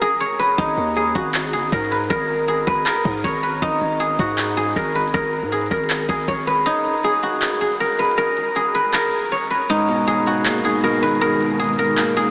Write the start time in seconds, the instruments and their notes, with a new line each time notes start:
Already playing: guzheng A#4
0.01 guzheng G#4
0.20 guzheng C#5
0.39 guzheng B4
0.58 808-style bass G#1, guzheng D#4, kick, closed hi-hat
0.77 808-style bass D#2, closed hi-hat
0.96 guzheng G#4, closed hi-hat
1.15 808-style bass G#1, guzheng F#4, kick, closed hi-hat
1.34 clap, closed hi-hat
1.41 closed hi-hat
1.47 closed hi-hat
1.53 808-style bass F#1, guzheng G#4, closed hi-hat
1.63 808-style bass G#1
1.72 808-style bass G#2, guzheng A#4, kick, closed hi-hat
1.79 closed hi-hat
1.85 closed hi-hat
1.91 guzheng B4, closed hi-hat
1.98 closed hi-hat
2.04 closed hi-hat
2.10 808-style bass G#1, guzheng A#4, kick, closed hi-hat
2.29 closed hi-hat
2.48 guzheng G#4, closed hi-hat
2.67 808-style bass G#1, guzheng B4, kick, closed hi-hat
2.86 guzheng A#4, clap, closed hi-hat
2.92 closed hi-hat
2.99 closed hi-hat
3.05 808-style bass G#2, kick, closed hi-hat
3.11 closed hi-hat
3.18 closed hi-hat
3.24 808-style bass G#1, guzheng C#5, kick, closed hi-hat
3.30 closed hi-hat
3.37 closed hi-hat
3.43 guzheng B4, closed hi-hat
3.62 808-style bass G#1, guzheng D#4, kick, closed hi-hat
3.81 808-style bass G#1, closed hi-hat
4.00 guzheng G#4, closed hi-hat
4.19 808-style bass G#2, guzheng F#4, kick, closed hi-hat
4.38 clap, closed hi-hat
4.44 closed hi-hat
4.51 closed hi-hat
4.57 guzheng G#4, closed hi-hat
4.76 808-style bass G#1, guzheng A#4, kick, closed hi-hat
4.82 closed hi-hat
4.89 closed hi-hat
4.95 guzheng B4, closed hi-hat
5.01 closed hi-hat
5.08 closed hi-hat
5.14 808-style bass G#1, guzheng A#4, kick, closed hi-hat
5.33 closed hi-hat
5.42 808-style bass G#2
5.52 guzheng G#4, closed hi-hat
5.57 closed hi-hat
5.61 closed hi-hat
5.66 closed hi-hat
5.71 808-style bass G#1, guzheng A#4, kick, closed hi-hat, open hi-hat
5.77 closed hi-hat
5.84 closed hi-hat
5.90 clap, closed hi-hat
5.96 closed hi-hat
6.03 closed hi-hat
6.09 808-style bass G#1, guzheng G#4, kick, closed hi-hat
6.15 closed hi-hat
6.22 closed hi-hat
6.28 808-style bass G#1, guzheng C#5, kick, closed hi-hat
6.47 guzheng B4, closed hi-hat
6.66 guzheng D#4, closed hi-hat
6.85 closed hi-hat
7.03 guzheng G#4, closed hi-hat
7.23 guzheng F#4, closed hi-hat
7.42 clap, closed hi-hat
7.48 closed hi-hat
7.54 closed hi-hat
7.61 guzheng G#4, closed hi-hat
7.80 guzheng A#4, closed hi-hat
7.86 closed hi-hat
7.92 closed hi-hat
7.99 guzheng B4, closed hi-hat
8.05 closed hi-hat
8.11 closed hi-hat
8.18 guzheng A#4, closed hi-hat
8.37 closed hi-hat
8.55 guzheng G#4, closed hi-hat
8.75 guzheng B4, closed hi-hat
8.94 guzheng A#4, clap, closed hi-hat
9.00 closed hi-hat
9.06 closed hi-hat
9.13 closed hi-hat
9.19 closed hi-hat
9.25 closed hi-hat
9.32 guzheng C#5, closed hi-hat
9.38 closed hi-hat
9.44 closed hi-hat
9.50 guzheng B4, closed hi-hat
9.69 clean electric guitar G#2, guzheng D#4, closed hi-hat
9.89 clean electric guitar B2, closed hi-hat
10.07 guzheng G#4, closed hi-hat
10.27 guzheng F#4, closed hi-hat
10.45 clean electric guitar A#3, clap, closed hi-hat
10.52 closed hi-hat
10.58 closed hi-hat
10.64 clean electric guitar G#2, guzheng G#4, closed hi-hat
10.84 clean electric guitar B2, guzheng A#4, closed hi-hat
10.90 closed hi-hat
10.96 closed hi-hat
11.03 clean electric guitar D#3, guzheng B4, closed hi-hat
11.09 closed hi-hat
11.15 closed hi-hat
11.21 clean electric guitar G#2, guzheng A#4, closed hi-hat
11.40 clean electric guitar B2, closed hi-hat
11.59 guzheng G#4, closed hi-hat
11.64 closed hi-hat
11.69 closed hi-hat
11.74 closed hi-hat
11.78 guzheng A#4, closed hi-hat, open hi-hat
11.85 closed hi-hat
11.91 closed hi-hat
11.97 clean electric guitar A#3, clap, closed hi-hat
12.04 closed hi-hat
12.10 closed hi-hat
12.16 clean electric guitar G#2, guzheng G#4, closed hi-hat
12.23 closed hi-hat